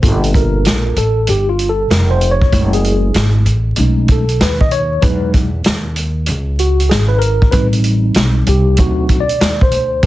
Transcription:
0.02 0.63 G1 loud
0.02 0.93 A#3 soft
0.02 0.93 F4 medium
0.02 0.93 A4 medium
0.02 kick loud
0.02 closed hi-hat medium
0.24 closed hi-hat medium
0.34 0.99 A#4 medium
0.34 kick loud
0.34 closed hi-hat medium
0.65 snare loud
0.65 closed hi-hat medium
0.96 1.26 A1 medium
0.96 1.30 A4 medium
0.96 closed hi-hat medium
1.27 1.87 G1 medium
1.27 1.48 G4 medium
1.27 closed hi-hat loud
1.49 1.68 F4 medium
1.59 closed hi-hat medium
1.69 1.89 A4 medium
1.90 2.50 F1 medium
1.90 2.10 A#4 medium
1.90 snare loud
1.90 closed hi-hat medium
2.11 2.33 C5 medium
2.21 closed hi-hat medium
2.31 2.71 C#5 loud
2.42 kick medium
2.52 3.12 F#1 loud
2.52 3.42 G#3 medium
2.52 3.43 A3 medium
2.52 3.43 E4 medium
2.52 kick loud
2.52 closed hi-hat medium
2.73 3.33 G#4 medium
2.73 closed hi-hat medium
2.84 closed hi-hat medium
3.14 3.45 G#1 medium
3.14 snare loud
3.14 closed hi-hat medium
3.46 3.76 A1 medium
3.46 closed hi-hat medium
3.76 4.37 B1 medium
3.76 4.22 G#3 medium
3.76 4.23 A3 soft
3.76 4.23 C#4 medium
3.76 4.23 D#4 medium
3.76 closed hi-hat loud
4.08 4.43 A4 medium
4.08 kick medium
4.08 closed hi-hat medium
4.29 closed hi-hat medium
4.40 5.00 D#2 medium
4.40 4.62 B4 medium
4.40 snare loud
4.40 closed hi-hat medium
4.61 4.73 D#5 loud
4.61 kick medium
4.71 5.04 C#5 loud
4.71 closed hi-hat medium
5.01 5.62 E2 loud
5.01 5.47 F#3 medium
5.01 5.47 G#3 medium
5.01 5.48 D#4 medium
5.01 5.32 B4 medium
5.01 kick loud
5.01 closed hi-hat medium
5.34 kick loud
5.34 closed hi-hat medium
5.64 6.25 D#2 medium
5.64 snare loud
5.64 closed hi-hat medium
5.96 closed hi-hat medium
6.26 6.88 C#2 medium
6.26 closed hi-hat loud
6.59 6.89 F#4 medium
6.59 closed hi-hat medium
6.80 closed hi-hat medium
6.89 7.50 G#1 medium
6.89 7.09 G#4 medium
6.89 snare loud
6.89 closed hi-hat medium
7.08 7.21 B4 loud
7.19 7.53 A#4 loud
7.19 closed hi-hat medium
7.42 kick medium
7.51 8.13 A1 loud
7.51 8.73 G3 medium
7.51 8.74 C4 medium
7.51 8.74 D#4 medium
7.51 7.66 B4 loud
7.51 kick loud
7.51 closed hi-hat medium
7.73 closed hi-hat medium
7.84 closed hi-hat medium
8.14 8.45 B1 medium
8.14 snare loud
8.14 closed hi-hat medium
8.46 8.77 C2 loud
8.46 8.80 G4 medium
8.46 closed hi-hat medium
8.77 9.38 D2 loud
8.77 9.23 F#3 medium
8.77 9.23 C4 soft
8.77 9.23 D#4 medium
8.77 9.22 F#4 medium
8.77 kick medium
8.77 closed hi-hat loud
9.09 kick medium
9.09 closed hi-hat medium
9.20 9.59 D5 loud
9.29 closed hi-hat medium
9.40 9.70 D#2 medium
9.40 snare loud
9.40 closed hi-hat medium
9.61 10.05 C5 medium
9.61 kick medium
9.71 10.01 D2 medium
9.71 closed hi-hat medium
10.03 10.06 G1 loud
10.03 kick loud
10.03 closed hi-hat medium

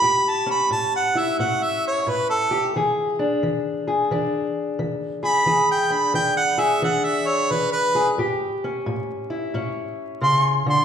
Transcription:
0.00 0.66 A2 medium
0.00 1.15 E4 medium
0.00 2.50 G4 medium
0.00 0.30 B5 loud
0.29 0.50 A5 medium
0.46 1.38 C#4 medium
0.51 0.72 B5 medium
0.71 1.34 A2 medium
0.71 0.94 A5 medium
0.96 1.20 F#5 medium
1.15 3.19 E4 medium
1.15 1.39 E5 medium
1.39 2.02 A2 medium
1.39 2.72 C#4 medium
1.39 1.65 F#5 medium
1.63 1.85 E5 medium
1.87 2.11 C#5 medium
2.07 2.70 A2 medium
2.07 2.29 B4 medium
2.30 2.66 A4 medium
2.51 2.72 G4 medium
2.76 3.38 E3 medium
2.76 3.87 G#4 medium
3.19 4.12 D4 medium
3.43 4.06 E3 medium
3.87 5.22 G#4 medium
4.11 4.74 E3 medium
4.11 5.44 D4 medium
4.79 5.42 E3 medium
5.23 5.44 G#4 medium
5.23 5.68 B5 loud
5.46 6.09 E3 medium
5.46 6.57 G#4 medium
5.71 5.94 G5 medium
5.90 6.81 D4 medium
5.90 6.14 B5 medium
6.14 6.77 E3 medium
6.14 6.37 G5 medium
6.37 6.62 F#5 medium
6.58 7.94 G#4 medium
6.58 6.82 E5 medium
6.82 7.45 E3 medium
6.82 8.15 D4 medium
6.82 7.06 F#5 medium
7.04 7.29 E5 medium
7.28 7.53 C#5 medium
7.51 8.14 E3 medium
7.51 7.72 B4 medium
7.72 8.09 B4 medium
7.95 8.16 G#4 medium
8.18 8.81 A2 medium
8.18 10.85 G4 medium
8.64 9.53 C#4 medium
8.86 9.49 A2 medium
9.30 10.85 E4 medium
9.54 10.17 A2 medium
9.54 10.85 C#4 medium
10.21 10.66 C#3 medium
10.21 10.45 C6 loud
10.66 10.85 D3 medium
10.66 10.85 C6 medium

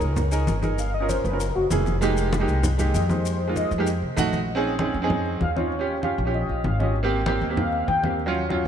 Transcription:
0.00 0.44 C#2 loud
0.00 0.20 D#4 medium
0.00 0.21 G#4 medium
0.00 0.21 A#4 medium
0.00 0.29 A#4 medium
0.00 high conga soft
0.00 maracas soft
0.16 high conga soft
0.16 low conga medium
0.16 maracas medium
0.31 0.53 D#4 medium
0.31 0.54 G#4 medium
0.31 0.54 A#4 loud
0.31 high conga soft
0.31 maracas medium
0.47 1.19 G1 medium
0.47 high conga medium
0.47 maracas medium
0.62 0.78 D#4 medium
0.62 0.78 G#4 medium
0.62 0.79 A#4 medium
0.62 high conga medium
0.62 maracas soft
0.79 0.94 F5 medium
0.79 high conga soft
0.79 maracas medium
0.94 1.09 D#5 loud
0.94 high conga soft
1.00 1.23 C#4 medium
1.00 1.23 F4 medium
1.00 1.24 A#4 loud
1.09 1.24 C5 medium
1.09 high conga medium
1.09 maracas medium
1.24 1.53 F#1 loud
1.24 1.40 B4 medium
1.24 high conga soft
1.24 maracas soft
1.32 1.40 C#4 medium
1.32 1.40 F4 medium
1.32 1.41 A#4 medium
1.40 1.55 A#4 medium
1.40 high conga soft
1.40 maracas medium
1.55 1.70 F#1 medium
1.55 1.65 F#4 medium
1.55 high conga soft
1.70 2.42 F1 medium
1.70 1.92 A#3 medium
1.70 1.93 E4 medium
1.70 1.93 G#4 loud
1.70 high conga medium
1.70 maracas medium
1.86 high conga medium
1.86 maracas soft
2.01 2.29 G#3 loud
2.01 2.29 A#3 loud
2.01 2.29 D#4 loud
2.01 2.30 G4 loud
2.01 high conga soft
2.01 maracas medium
2.17 high conga soft
2.17 maracas medium
2.33 high conga loud
2.33 maracas medium
2.39 2.67 G#3 loud
2.39 2.67 A#3 medium
2.39 2.67 D#4 loud
2.39 2.68 G4 loud
2.48 2.91 C2 loud
2.48 high conga soft
2.48 maracas soft
2.63 high conga soft
2.63 low conga medium
2.63 maracas medium
2.78 3.00 G#3 medium
2.78 3.00 A#3 medium
2.78 3.01 D#4 medium
2.78 3.01 G4 loud
2.78 high conga soft
2.78 low conga medium
2.78 maracas medium
2.94 3.66 F2 loud
2.94 3.10 D#5 medium
2.94 high conga medium
2.94 maracas medium
3.09 3.36 G#3 medium
3.09 3.37 A#3 medium
3.09 3.37 D#4 medium
3.09 3.37 G4 medium
3.09 3.53 C5 medium
3.09 high conga medium
3.09 maracas soft
3.25 high conga soft
3.25 maracas medium
3.40 high conga soft
3.47 3.70 G#3 medium
3.47 3.70 A#3 medium
3.47 3.70 D#4 medium
3.47 3.71 F4 medium
3.56 3.71 D#5 medium
3.56 high conga medium
3.56 maracas medium
3.71 4.00 F2 loud
3.71 high conga soft
3.71 maracas soft
3.78 3.86 G#3 loud
3.78 3.87 A#3 medium
3.78 3.87 D#4 medium
3.78 3.87 G4 loud
3.87 high conga soft
3.87 maracas medium
4.02 4.16 C2 medium
4.02 high conga soft
4.16 4.89 A#1 medium
4.16 4.39 A3 loud
4.16 4.39 D#4 loud
4.16 4.40 F#4 loud
4.16 high conga medium
4.16 maracas medium
4.33 high conga medium
4.33 maracas soft
4.49 high conga soft
4.55 4.72 C4 loud
4.55 4.72 C#4 loud
4.55 4.73 D#4 medium
4.55 4.73 G#4 loud
4.64 high conga soft
4.78 4.95 C4 loud
4.78 4.95 C#4 medium
4.78 4.96 D#4 medium
4.78 4.96 G#4 loud
4.78 high conga medium
4.94 5.38 F2 medium
4.94 high conga soft
5.02 5.40 C4 loud
5.02 5.41 C#4 medium
5.02 5.41 D#4 loud
5.02 5.41 G#4 loud
5.10 high conga soft
5.10 low conga medium
5.26 high conga soft
5.41 6.13 D#2 medium
5.41 5.56 F5 loud
5.41 high conga medium
5.56 5.72 C4 medium
5.56 5.72 C#4 medium
5.56 5.72 D#4 medium
5.56 5.73 F4 medium
5.56 6.00 C#5 medium
5.56 high conga medium
5.72 high conga soft
5.79 5.96 C#4 loud
5.79 5.96 F4 medium
5.79 5.97 G4 loud
5.88 high conga soft
6.02 6.19 C#4 medium
6.02 6.19 F4 medium
6.02 6.20 G4 medium
6.02 6.12 F5 loud
6.02 high conga medium
6.18 6.47 A#1 loud
6.18 high conga soft
6.25 6.63 C#4 medium
6.25 6.64 F4 medium
6.25 6.64 G4 loud
6.34 6.63 D#5 medium
6.34 high conga soft
6.49 6.64 A#1 medium
6.49 high conga soft
6.64 7.36 G#1 loud
6.64 6.79 F5 loud
6.64 high conga medium
6.80 6.95 C#4 medium
6.80 6.96 F4 medium
6.80 6.96 G4 medium
6.80 6.95 D#5 medium
6.80 high conga medium
6.96 high conga soft
7.03 7.19 A#3 loud
7.03 7.20 C4 loud
7.03 7.20 G4 loud
7.11 high conga soft
7.26 7.42 A#3 loud
7.26 7.43 C4 medium
7.26 7.43 G4 loud
7.26 high conga medium
7.41 7.85 D#2 loud
7.41 high conga soft
7.49 7.87 A#3 medium
7.49 7.88 C4 medium
7.49 7.88 G4 medium
7.57 7.86 F5 medium
7.57 high conga soft
7.57 low conga medium
7.72 high conga soft
7.88 8.60 D#2 loud
7.88 8.03 G5 loud
7.88 high conga medium
8.03 8.19 A#3 medium
8.03 8.19 C4 medium
8.03 8.20 G4 medium
8.03 8.13 F5 loud
8.03 high conga medium
8.19 high conga soft
8.26 8.43 F#3 loud
8.26 8.43 C#4 loud
8.26 8.44 F4 loud
8.35 high conga soft
8.49 8.66 F#3 loud
8.49 8.66 C#4 medium
8.49 8.67 F4 loud
8.49 high conga medium

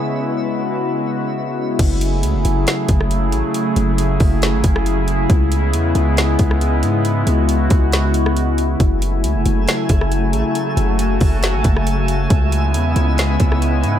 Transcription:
0.00 1.75 C#3 medium
0.00 1.76 G#3 medium
0.00 1.76 B3 medium
0.00 1.76 C#4 medium
0.00 1.76 E4 medium
0.00 1.77 F#4 medium
0.00 1.76 B4 medium
0.00 1.75 E5 medium
1.79 2.25 F#1 loud
1.79 8.76 C#3 medium
1.79 5.26 F#3 medium
1.79 5.26 A3 medium
1.79 10.51 E4 medium
1.79 7.01 G#4 medium
1.79 kick loud
1.79 closed hi-hat medium
1.79 crash loud
2.01 closed hi-hat medium
2.23 2.36 C#2 loud
2.23 closed hi-hat loud
2.34 2.44 F#1 loud
2.45 2.66 F#1 loud
2.45 closed hi-hat medium
2.67 snare loud
2.67 closed hi-hat medium
2.88 3.34 F#1 loud
2.88 kick loud
2.88 closed hi-hat medium
3.01 cross-stick medium
3.11 closed hi-hat medium
3.32 3.43 A1 loud
3.32 closed hi-hat medium
3.54 closed hi-hat medium
3.76 4.18 F#1 loud
3.76 closed hi-hat medium
3.98 closed hi-hat loud
4.20 4.55 F#1 loud
4.20 kick loud
4.20 open hi-hat soft
4.42 snare loud
4.42 closed hi-hat medium
4.53 4.63 G#1 loud
4.64 5.27 F#1 medium
4.64 kick loud
4.64 closed hi-hat medium
4.76 cross-stick loud
4.86 closed hi-hat medium
5.08 closed hi-hat medium
5.30 5.75 C#2 loud
5.30 8.76 G#3 medium
5.30 8.77 B3 medium
5.30 kick loud
5.30 closed hi-hat medium
5.52 closed hi-hat medium
5.73 5.94 E2 loud
5.73 closed hi-hat medium
5.95 6.37 C#2 loud
5.95 closed hi-hat medium
6.17 snare loud
6.17 closed hi-hat medium
6.39 6.84 C#2 loud
6.39 kick loud
6.39 closed hi-hat medium
6.51 cross-stick medium
6.61 closed hi-hat medium
6.83 7.25 G#2 loud
6.83 closed hi-hat medium
7.05 8.78 F#4 medium
7.05 closed hi-hat medium
7.27 7.69 C#2 loud
7.27 closed hi-hat medium
7.49 closed hi-hat loud
7.70 8.76 C#2 loud
7.70 kick loud
7.70 closed hi-hat medium
7.92 snare loud
7.92 closed hi-hat medium
8.14 closed hi-hat medium
8.26 cross-stick medium
8.37 closed hi-hat medium
8.58 closed hi-hat medium
8.80 9.25 F#1 loud
8.80 13.99 C#3 medium
8.80 12.27 F#3 medium
8.80 12.27 A3 medium
8.80 10.53 G#4 medium
8.80 13.99 E5 medium
8.80 13.99 G#5 medium
8.80 kick loud
8.80 closed hi-hat medium
9.02 closed hi-hat medium
9.24 9.36 C#2 loud
9.24 closed hi-hat medium
9.35 9.45 F#1 loud
9.46 9.67 F#1 loud
9.46 closed hi-hat medium
9.68 snare loud
9.68 closed hi-hat medium
9.89 10.35 F#1 loud
9.89 kick loud
9.89 closed hi-hat medium
10.01 cross-stick medium
10.12 closed hi-hat medium
10.33 10.44 A1 loud
10.33 closed hi-hat medium
10.55 12.29 F#4 medium
10.55 12.29 A4 medium
10.55 closed hi-hat medium
10.77 11.19 F#1 loud
10.77 closed hi-hat medium
10.99 closed hi-hat medium
11.21 11.55 F#1 loud
11.21 kick loud
11.21 open hi-hat medium
11.43 snare loud
11.43 closed hi-hat medium
11.54 11.64 G#1 loud
11.64 12.28 F#1 loud
11.64 kick loud
11.64 closed hi-hat medium
11.77 cross-stick medium
11.87 closed hi-hat medium
12.08 closed hi-hat medium
12.30 12.76 C#2 loud
12.30 13.99 G#3 medium
12.30 13.99 B3 medium
12.30 13.99 C#4 medium
12.30 13.99 E4 medium
12.30 13.99 B4 medium
12.30 kick loud
12.30 closed hi-hat medium
12.52 closed hi-hat medium
12.74 12.95 E2 loud
12.74 closed hi-hat medium
12.96 13.38 C#2 loud
12.96 closed hi-hat medium
13.18 snare loud
13.18 closed hi-hat medium
13.40 13.85 C#2 loud
13.40 kick loud
13.40 closed hi-hat medium
13.52 cross-stick medium
13.62 closed hi-hat medium
13.84 13.99 G#2 loud
13.84 closed hi-hat medium

